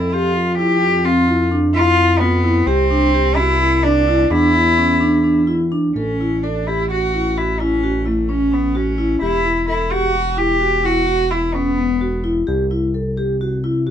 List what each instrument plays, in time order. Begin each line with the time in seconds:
Already playing: analog synth bass F2, cello E4
0.12 cello F4, vibraphone G4
0.36 vibraphone F4
0.58 vibraphone E4, cello G4
0.82 vibraphone F4
1.05 vibraphone C4, cello F4
1.28 vibraphone E4
1.52 vibraphone D4
1.74 vibraphone E4, cello F4
1.98 vibraphone E4
2.19 cello B3, vibraphone F4
2.44 vibraphone E4
2.66 analog synth bass C2, cello C4, vibraphone G4
2.91 vibraphone D4
3.14 vibraphone G4
3.36 cello E4, vibraphone F#4
3.61 vibraphone E4
3.83 cello D4, vibraphone D4
4.08 vibraphone E4
4.30 analog synth bass E2, vibraphone D4, cello E4
4.54 vibraphone E4
4.77 vibraphone C#4
5.01 vibraphone D4
5.24 vibraphone D4
5.47 vibraphone E4
5.72 vibraphone D4
5.95 analog synth bass A1, cello C#4, vibraphone A4
6.21 vibraphone E4
6.43 cello D4, vibraphone A4
6.67 cello E4, vibraphone G4
6.91 vibraphone F#4, cello F#4
7.14 vibraphone E4
7.37 cello E4, vibraphone F#4
7.60 cello C#4, vibraphone E4
7.83 vibraphone F#4
8.06 cello A3, vibraphone E4
8.29 vibraphone C#4, cello C#4
8.52 cello B3, vibraphone C#4
8.75 cello C#4, vibraphone F#4
8.98 vibraphone E4
9.21 analog synth bass E1, cello E4, vibraphone G4
9.45 vibraphone E4
9.68 cello E4, vibraphone A4
9.90 cello F#4, vibraphone G4
10.14 vibraphone F#4
10.37 vibraphone E4, cello G4
10.61 vibraphone F#4
10.83 vibraphone E4, cello F#4
11.07 vibraphone F#4
11.30 vibraphone E4, cello E4
11.54 cello B3, vibraphone C#4
11.78 vibraphone B3
12.01 vibraphone F#4
12.24 vibraphone E4
12.47 analog synth bass C2, vibraphone G4
12.71 vibraphone E4
12.94 vibraphone A4
13.17 vibraphone G4
13.41 vibraphone F#4
13.64 vibraphone E4
13.87 vibraphone F#4